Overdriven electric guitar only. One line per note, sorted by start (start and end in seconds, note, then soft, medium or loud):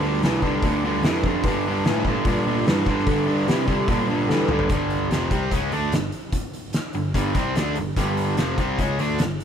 0.02 0.21 G2 medium
0.02 0.21 D3 medium
0.23 0.41 G2 medium
0.23 0.42 E3 loud
0.43 0.61 G2 medium
0.43 0.61 D3 medium
0.63 0.82 G2 medium
0.63 0.82 D3 medium
0.85 1.03 G2 medium
0.85 1.03 D3 medium
1.04 1.22 G2 medium
1.04 1.23 E3 medium
1.25 1.43 G2 medium
1.25 1.43 D3 medium
1.46 1.64 G2 medium
1.46 1.64 D3 medium
1.66 1.84 G2 medium
1.66 1.85 D3 medium
1.86 2.04 G2 medium
1.86 2.05 E3 loud
2.07 2.25 G2 medium
2.07 2.25 D3 medium
2.27 2.45 G2 medium
2.27 2.45 D3 medium
2.47 2.65 G2 medium
2.47 2.65 D3 medium
2.67 2.85 G2 medium
2.67 2.86 E3 medium
2.87 3.06 G2 medium
2.87 3.06 D3 medium
3.08 3.26 G2 medium
3.08 3.26 D3 medium
3.27 3.46 G2 medium
3.27 3.46 D3 medium
3.48 3.66 G2 medium
3.48 3.67 E3 loud
3.67 3.86 G2 medium
3.67 3.87 D3 medium
3.89 4.07 G2 medium
3.89 4.08 D3 medium
4.09 4.28 G2 medium
4.09 4.28 D3 medium
4.30 4.48 G2 medium
4.30 4.49 E3 medium
4.50 4.69 G2 medium
4.50 4.69 D3 medium
4.71 5.11 G2 medium
4.71 5.11 D3 medium
4.71 5.11 G3 medium
5.11 5.31 F2 loud
5.11 5.30 C3 medium
5.11 5.31 F3 loud
5.32 5.51 C3 medium
5.32 5.51 G3 medium
5.32 5.52 C4 medium
5.52 5.72 C#3 medium
5.52 5.72 G#3 medium
5.52 5.72 C#4 medium
5.72 5.92 D3 medium
5.72 5.93 A3 medium
5.72 5.93 D4 medium
5.93 6.09 G2 medium
5.93 6.10 D3 medium
6.95 7.12 G2 medium
6.95 7.12 D3 medium
7.15 7.35 G2 medium
7.15 7.35 D3 medium
7.15 7.34 G3 medium
7.35 7.55 C3 medium
7.35 7.56 G3 medium
7.35 7.56 C4 loud
7.56 7.76 D3 medium
7.56 7.76 A3 medium
7.56 7.77 D4 medium
7.77 7.93 G2 medium
7.77 7.94 D3 medium
7.97 8.37 G2 medium
7.97 8.37 D3 medium
7.97 8.37 G3 medium
8.38 8.58 F2 medium
8.38 8.57 C3 medium
8.38 8.58 F3 loud
8.59 8.78 C3 medium
8.59 8.79 G3 medium
8.59 8.79 C4 medium
8.79 8.99 C#3 medium
8.79 8.99 G#3 medium
8.79 8.99 C#4 medium
8.99 9.19 D3 medium
8.99 9.19 A3 medium
8.99 9.20 D4 loud
9.20 9.37 G2 soft
9.20 9.37 D3 medium